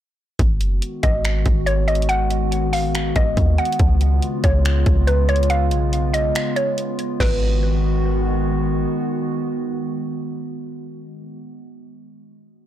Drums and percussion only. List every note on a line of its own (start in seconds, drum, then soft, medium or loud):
0.39 kick loud
0.39 closed hi-hat medium
0.61 closed hi-hat medium
0.82 closed hi-hat medium
1.03 kick medium
1.03 closed hi-hat medium
1.25 finger snap loud
1.25 closed hi-hat medium
1.46 kick loud
1.46 closed hi-hat medium
1.67 closed hi-hat medium
1.88 closed hi-hat soft
1.95 closed hi-hat soft
2.02 closed hi-hat medium
2.09 closed hi-hat medium
2.31 closed hi-hat medium
2.52 closed hi-hat medium
2.73 open hi-hat medium
2.95 finger snap loud
2.95 closed hi-hat medium
3.16 kick loud
3.16 closed hi-hat medium
3.37 kick loud
3.37 closed hi-hat medium
3.58 closed hi-hat soft
3.65 closed hi-hat soft
3.72 closed hi-hat medium
3.79 kick loud
3.79 closed hi-hat medium
4.01 closed hi-hat medium
4.22 closed hi-hat medium
4.44 kick medium
4.44 closed hi-hat medium
4.65 finger snap loud
4.65 closed hi-hat medium
4.86 kick medium
4.86 closed hi-hat medium
5.08 closed hi-hat medium
5.29 closed hi-hat soft
5.36 closed hi-hat medium
5.43 closed hi-hat medium
5.50 closed hi-hat medium
5.71 closed hi-hat medium
5.93 closed hi-hat medium
6.14 closed hi-hat medium
6.35 finger snap loud
6.35 closed hi-hat medium
6.56 closed hi-hat medium
6.78 closed hi-hat medium
6.99 closed hi-hat medium
7.20 kick loud
7.20 snare loud
7.20 crash medium